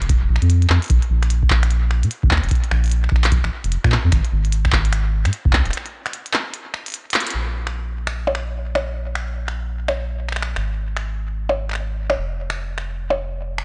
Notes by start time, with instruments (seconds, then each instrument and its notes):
Already playing: analog synth bass F1
0.02 closed hi-hat
0.09 kick, closed hi-hat
0.22 analog synth bass F1
0.29 analog synth bass A#1
0.36 finger snap
0.42 analog synth bass F2, closed hi-hat
0.50 closed hi-hat
0.62 closed hi-hat
0.70 analog synth bass F2, clap
0.82 closed hi-hat
0.84 closed hi-hat
0.86 closed hi-hat
0.88 analog synth bass A#1, kick, closed hi-hat
0.90 closed hi-hat
1.02 closed hi-hat
1.10 analog synth bass A#1
1.23 finger snap, closed hi-hat
1.30 closed hi-hat
1.43 kick
1.50 analog synth bass A#1, kick, clap
1.63 finger snap, closed hi-hat
1.71 closed hi-hat
1.91 finger snap
2.03 analog synth bass A#2, closed hi-hat
2.11 closed hi-hat
2.23 analog synth bass G#1, kick
2.31 analog synth bass D#2, kick, clap
2.37 finger snap
2.43 analog synth bass F1, closed hi-hat
2.49 kick, closed hi-hat
2.51 closed hi-hat
2.55 closed hi-hat
2.64 closed hi-hat
2.71 analog synth bass A#1, finger snap
2.84 closed hi-hat
2.86 closed hi-hat
2.88 closed hi-hat
2.89 closed hi-hat
2.91 closed hi-hat
3.04 finger snap
3.09 analog synth bass A#1, finger snap, kick
3.16 finger snap
3.24 clap, closed hi-hat
3.32 kick, closed hi-hat
3.44 analog synth bass A#1, finger snap
3.64 analog synth bass F1, closed hi-hat
3.72 closed hi-hat
3.84 analog synth bass A#2, finger snap, kick
3.92 clap
4.05 analog synth bass F2
4.12 analog synth bass G#1, finger snap, kick, closed hi-hat
4.25 closed hi-hat
4.32 analog synth bass G#1
4.45 closed hi-hat
4.52 closed hi-hat
4.65 finger snap, kick
4.73 analog synth bass G#1, kick, clap
4.85 closed hi-hat
4.93 finger snap, closed hi-hat
5.25 analog synth bass G#2, finger snap, closed hi-hat
5.33 closed hi-hat
5.45 analog synth bass F#1, kick
5.53 analog synth bass C#2, kick, clap
5.66 analog synth bass D#1, finger snap, closed hi-hat
5.71 finger snap, closed hi-hat
5.77 finger snap
5.86 closed hi-hat
6.06 finger snap, closed hi-hat
6.13 closed hi-hat
6.26 closed hi-hat
6.34 finger snap, clap
6.54 closed hi-hat
6.74 finger snap
6.86 closed hi-hat
6.88 closed hi-hat
6.90 closed hi-hat
6.92 closed hi-hat
6.94 closed hi-hat
7.10 clap, closed hi-hat
7.14 closed hi-hat
7.20 closed hi-hat
7.27 closed hi-hat
7.30 analog synth bass A#1, closed hi-hat
7.67 finger snap
8.07 finger snap
8.27 percussion blips
8.35 finger snap
8.75 finger snap, percussion blips
9.15 finger snap
9.48 finger snap
9.88 finger snap, percussion blips
10.29 finger snap
10.32 finger snap
10.36 finger snap
10.42 finger snap
10.56 analog synth bass G#1, finger snap
10.97 finger snap
11.49 percussion blips
11.69 finger snap
11.71 finger snap
11.73 finger snap
11.75 finger snap
12.10 finger snap, percussion blips
12.17 analog synth bass F1
12.50 finger snap
12.78 finger snap
13.10 percussion blips
13.58 finger snap